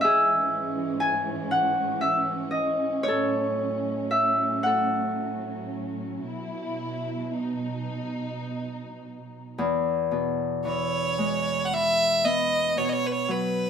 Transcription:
Already playing: C#4
0.01 G#4 E5
0.05 G#2 E3 G#3
1.00 G#5
1.51 F#5
2.01 E5
2.51 D#5
3.03 C#5
3.08 A2 F#3 A4
4.11 E5
4.63 A4 F#5
6.25 B2 E4
7.32 D#4
9.58 E2
10.11 B2
10.65 E3 C#5
11.18 G#3
11.65 F#5
11.73 E3 E5
12.25 B3 D#5
12.77 B2 C#5
12.89 C#5 D#5
13.06 B4
13.12 C#5
13.28 F#3 B4

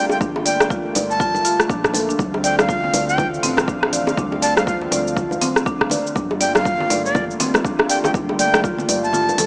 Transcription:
Already playing: D3 G3 A3 A#3 F4
0.09 G5, high bongo, cabasa
0.21 G1 D4, kick, low bongo, cabasa
0.36 high bongo
0.46 D5 G5, open hi-hat, cabasa
0.60 cross-stick, high bongo, cabasa
0.70 F4, kick, cabasa
0.95 G1 D5, open hi-hat, low bongo, cabasa
1.10 A5, cabasa
1.20 F4, kick, cabasa
1.35 low bongo, cabasa
1.45 F4, open hi-hat, cabasa
1.60 cross-stick, cabasa
1.69 A#1 D4, kick, cabasa
1.84 kick, cross-stick, cabasa
1.94 A4, open hi-hat, low bongo, cabasa
2.09 D4, cabasa
2.19 D2 F3 C4 D4 F5, kick, high conga, cabasa
2.34 high bongo, high conga
2.44 D5 G5, open hi-hat, cabasa
2.58 F5, cross-stick, high bongo, high conga, cabasa
2.69 F4, kick, cabasa
2.84 low conga
2.93 D2 D5, open hi-hat, low bongo, high conga, cabasa
3.08 G5, cabasa
3.18 F4, kick, low bongo, low conga, cabasa
3.34 cabasa
3.43 A1 C4, open hi-hat, low conga, cabasa
3.57 cross-stick, low bongo, cabasa
3.68 D4, kick, cabasa
3.83 cross-stick, high bongo
3.93 D5, open hi-hat, cabasa
4.07 high bongo, low conga, cabasa
4.17 D2 D4, kick, low bongo, high conga, cabasa
4.32 high bongo, high conga
4.42 D5 A5, open hi-hat, cabasa
4.57 F5, cross-stick, high bongo, high conga, cabasa
4.67 F4 F5, kick, cabasa
4.82 low conga
4.91 D2 D5, open hi-hat, low bongo, high conga, cabasa
5.07 cabasa
5.17 F4, kick, low conga, cabasa
5.31 low bongo, cabasa
5.41 C4, open hi-hat, high conga, low conga, cabasa
5.56 cross-stick, cabasa
5.66 D4, kick, cabasa
5.81 kick, cross-stick
5.90 D5, open hi-hat, low bongo, low conga, cabasa
6.07 cabasa
6.15 G1 G3 A3 A#3 D4 F4, kick, high conga, cabasa
6.31 high bongo, high conga
6.41 D5 G5, open hi-hat, cabasa
6.55 F5, cross-stick, high bongo, high conga, cabasa
6.65 F4, kick, cabasa
6.80 low conga
6.90 G1 D5, open hi-hat, low bongo, high conga, cabasa
7.05 D5, cabasa
7.15 F4, kick, low bongo, low conga, cabasa
7.31 cabasa
7.40 C4, open hi-hat, low conga, cabasa
7.54 cross-stick, low bongo, cabasa
7.65 D4, kick, cabasa
7.79 cross-stick, high bongo
7.89 D5 G5, open hi-hat, cabasa
8.04 G5, high bongo, low conga, cabasa
8.14 G1 D4, kick, low bongo, high conga, cabasa
8.29 high bongo, high conga
8.39 D5 G5, open hi-hat, cabasa
8.54 cross-stick, high bongo, high conga, cabasa
8.64 F4, kick, cabasa
8.78 low conga, cabasa
8.89 G1 D5, open hi-hat, low bongo, high conga, cabasa
9.03 A5, cabasa
9.13 A1 F4, low conga, cabasa
9.29 low bongo, cabasa
9.38 C2 A4, open hi-hat, high conga, low conga, cabasa

